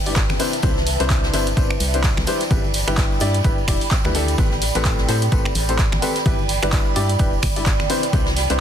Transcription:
Already playing: G1 B4 E5 A5
0.06 G3 D4 E4 G4 D5, open hi-hat, ride, tambourine
0.16 kick, snare, clap, ride, tambourine
0.29 G1, finger snap, snare, tambourine, high conga
0.39 C3 D4 E4 B4 C5 D5, open hi-hat, ride, tambourine
0.53 closed hi-hat, tambourine
0.63 C2 C3 D4 E4 B4 C5, kick, closed hi-hat, ride, tambourine, high conga
0.77 snare, tambourine
0.84 G5, snare, open hi-hat, ride, tambourine
1.00 C2 C3 D4 E4 B4 C5, snare, closed hi-hat, tambourine
1.10 kick, snare, clap, closed hi-hat, ride, tambourine
1.24 snare, tambourine
1.31 G1 C3 D4 E4 B4 C5 B5, snare, open hi-hat, ride, tambourine
1.47 closed hi-hat, tambourine
1.57 G1 C3 D4 E4 B4 C5, kick, closed hi-hat, ride, tambourine
1.70 finger snap, tambourine
1.80 C2, open hi-hat, ride, tambourine
1.94 C3 D4 E4 B4 C5, closed hi-hat, tambourine
2.03 kick, snare, clap, closed hi-hat, ride, tambourine
2.17 C2, finger snap, snare, tambourine, high conga
2.27 G3 D4 E4 B4 C5, open hi-hat, ride, tambourine
2.40 snare, closed hi-hat, tambourine
2.50 G1 G3 D4 E4 G4 B4, kick, closed hi-hat, ride, tambourine, high conga
2.64 tambourine
2.74 open hi-hat, ride, tambourine
2.87 G1 G3 D4 E4 G4 B4, finger snap, closed hi-hat, ride, tambourine
2.97 kick, snare, clap, closed hi-hat, ride, tambourine
3.11 tambourine
3.20 G2 G3 D4 E4 G4 D5, open hi-hat, ride, tambourine
3.34 closed hi-hat, tambourine
3.44 G1 G3 D4 E4 G4 B4, kick, closed hi-hat, ride, tambourine
3.58 tambourine
3.68 E1 G3 D4 E4 G4 D5, finger snap, kick, open hi-hat, tambourine
3.81 open hi-hat, ride, tambourine
3.91 kick, snare, clap, closed hi-hat, ride, tambourine
4.04 D2 G3 D4 E4 G4 B4, finger snap, snare, tambourine, high conga
4.15 D4 E4 G4 A4, open hi-hat, ride, tambourine
4.28 closed hi-hat, tambourine
4.38 A1 A2 C4 G4 A4 B4, kick, closed hi-hat, ride, tambourine, high conga
4.52 snare, tambourine
4.62 snare, open hi-hat, ride, tambourine
4.75 A1 A2 C4 G4 A4 B4, snare, closed hi-hat, tambourine
4.85 kick, snare, clap, closed hi-hat, ride, tambourine
4.99 snare, tambourine
5.09 A2 C4 G4 A4 C5, snare, open hi-hat, ride, tambourine
5.22 closed hi-hat, tambourine
5.32 G1 A2 C4 G4 A4 B4, kick, closed hi-hat, ride, tambourine
5.45 finger snap, tambourine
5.55 A1, open hi-hat, ride, tambourine
5.69 A2 C4 G4 A4 C5, closed hi-hat, tambourine
5.79 kick, snare, clap, closed hi-hat, ride, tambourine
5.92 A1, finger snap, snare, tambourine, high conga
6.02 C4 G4 A4 B4, open hi-hat, ride, tambourine
6.16 snare, closed hi-hat, tambourine
6.26 G1 G3 D4 E4 G4 B4, kick, closed hi-hat, ride, tambourine, high conga
6.39 tambourine
6.49 open hi-hat, ride, tambourine
6.62 G1 G3 D4 E4 G4 B4, finger snap, closed hi-hat, tambourine
6.72 kick, snare, clap, closed hi-hat, ride, tambourine
6.86 tambourine
6.96 G2 G3 D4 E4 G4 D5, open hi-hat, ride, tambourine
7.09 closed hi-hat, tambourine
7.19 E1 G3 D4 E4 G4 B4, kick, closed hi-hat, ride, tambourine
7.33 tambourine
7.42 G1, finger snap, kick, open hi-hat, tambourine
7.56 G3 D4 E4 G4 D5, open hi-hat, ride, tambourine
7.66 kick, snare, clap, closed hi-hat, ride, tambourine
7.79 G1, finger snap, snare, tambourine, high conga
7.90 C3 D4 E4 B4 C5, open hi-hat, ride, tambourine
8.03 closed hi-hat, tambourine
8.13 C2 C3 D4 E4 B4 C5, kick, closed hi-hat, ride, tambourine, high conga
8.26 snare, tambourine
8.37 snare, open hi-hat, ride, tambourine
8.50 C2 C3 D4 E4 B4 C5, snare, closed hi-hat, tambourine

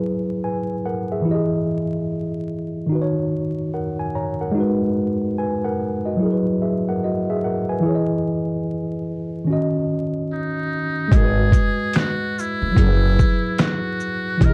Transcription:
Already playing: F#3 E4 G#4 B4
0.44 B4 G#5
0.86 A#4 F#5
1.12 G#4 E5
1.22 E3 E4
1.28 G4 D#5
1.35 G#4
2.86 D#3 D#4
2.92 F#4 B4
3.01 C#5
3.74 A#4 F#5
3.99 G#5
4.15 C#5 A#5
4.41 A#4 F#5
4.52 G#3 D#4
4.58 F#4 B4
5.38 B4 G#5
5.64 A#4 F#5
6.06 F#4 D#5
6.17 F#3 E4
6.23 G#4 A#4
6.32 B4
6.62 G#4 E5
6.89 A#4 F#5
7.04 F#4 D#5
7.30 G#4 E5
7.44 A#4 F#5
7.69 B4 G#5
7.80 E3 E4
7.86 G#4 C#5
7.95 D#5
9.45 D#3 C#4
9.50 F#4 D#5
10.33 D#4
11.08 G#3 D#5, kick
11.12 G#1 F#4 G#4, closed hi-hat
11.17 A#4
11.24 B4
11.52 kick, closed hi-hat, shaker
11.93 finger snap, snare, closed hi-hat
11.98 F#4
12.39 E4, shaker
12.62 F#1
12.72 F#3 E4
12.77 F#1 G#4, kick, closed hi-hat
12.81 A#4
12.87 B4
13.19 kick, shaker
13.58 F#4, finger snap, snare, closed hi-hat
14.00 shaker
14.37 E1 E3 E4, kick
14.42 G4 A#4, closed hi-hat
14.46 G#4 D#5

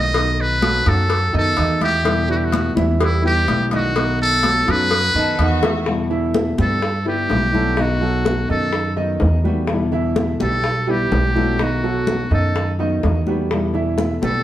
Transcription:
Already playing: B1 D3 G3 B3 E4 D#5
0.14 B2 D#3 A3 B3 D#4 F#4 D#5, cowbell, high conga
0.38 B4, high conga
0.62 F#3 F#4 A4, cowbell, high conga
0.85 F#2 D#3 F#3 A3 B3 F#4 A4, cowbell, high conga
1.09 muted nylon-string guitar stroke, cowbell, high conga
1.33 F#2 D#3 A3 B3 D#4 F#4 D#5, high conga
1.37 A4
1.57 E2 D#3 A3 B3 D#4 F#4 D#5, cowbell, high conga
1.81 E4 G4 E5, cowbell, high conga
2.03 B2 D3 G3 B3 E4, cowbell, high conga
2.29 G3 E4 F#4 B4, high conga
2.37 G4
2.45 F#4
2.52 cowbell, high conga
2.75 E2 D3 E3 G3 B3 E4 E5, high conga
2.99 G3 E4 G4 B4, muted nylon-string guitar stroke, cowbell, high conga
3.22 D3 G3 B3 E4 G4 B4, high conga
3.26 G4
3.47 B1 D3 G3 B3 E4, cowbell, high conga
3.71 D#3 D#4 D#5, cowbell, high conga
3.76 F#4
3.94 B2 D#3 A3 B3 D#4 F#4 D#5, cowbell
4.21 A4, high conga
4.43 F#3 F#4 A4, cowbell, high conga
4.66 F#2 D#3 F#3 A3 B3 F#4 A4, cowbell, high conga
4.71 B4
4.91 muted nylon-string guitar stroke, cowbell, high conga
5.14 F#2 D#3 A3 B3 D#4 F#4 A4 D#5, high conga
5.38 E2 D#3 A3 B3 D#4 F#4 D#5, cowbell, high conga
5.62 E3 E4 E5, cowbell, high bongo, high conga
5.86 B2 D3 G3 B3 E4, high bongo, high conga
6.10 E3 E4 E5, high bongo, high conga
6.34 high bongo, high conga
6.58 G2 G3 G4 B4, high bongo, high conga
6.62 A4
6.82 muted nylon-string guitar stroke, high bongo, high conga
7.05 D3 G3 B3 E4 G4 B4, high bongo, high conga
7.29 B1 D3 G3 B3 E4, high bongo, low bongo, high conga
7.53 D3 F#3 G3 B3 E4 F#4 A4, high conga
7.76 B2 D#3 A3 B3 D#4 F#4 D#5, high bongo, high conga
7.81 F#4
8.01 F#3 F#4 A4, high bongo, high conga
8.25 high bongo, high conga
8.49 F#2 D#3 D#4 A4 D#5, high bongo, high conga
8.73 muted nylon-string guitar stroke, high bongo, high conga
8.96 D#3 A3 B3 D#4 F#4 D#5, high bongo, high conga
9.20 E2 D#3 A3 B3, high bongo, low bongo, high conga
9.24 F#4
9.44 G3 A3 B3 F#4 G4 B4, high conga
9.49 D#3
9.67 B2 D3 G3, high bongo, high conga
9.72 B3 E4
9.92 E3 E4 E5, high bongo, high conga
10.16 high bongo, high conga
10.39 B1 G3 G4 A4 B4, high bongo, high conga
10.64 muted nylon-string guitar stroke, high bongo, high conga
10.87 D3 G3 B3 E4 G4 B4, high bongo, high conga
11.11 B1 D3 G3 B3 E4, high bongo, low bongo, high conga
11.35 D3 F#3 G3 B3 E4 F#4 A4, high conga
11.58 B2 D#3 A3 B3 D#4 F#4 D#5, high bongo, high conga
11.63 F#4
11.83 F#3 F#4 A4, high bongo, high conga
12.07 high bongo, high conga
12.31 F#2 D#3 D#4 A4 D#5, high bongo, high conga
12.55 muted nylon-string guitar stroke, high bongo, high conga
12.79 D#3 A3 B3 D#4 F#4 D#5, high bongo, high conga
13.03 E2 D#3 A3 B3 F#4, high bongo, low bongo, high conga
13.27 D#3 G3 A3 B3 F#4 G4 B4, high conga
13.51 B2 D3 G3 B3 E4, high bongo, high conga
13.74 E3 E4 E5, high bongo, high conga
13.98 high bongo, high conga
14.21 B1 G3 G4 A4 B4, high bongo, high conga

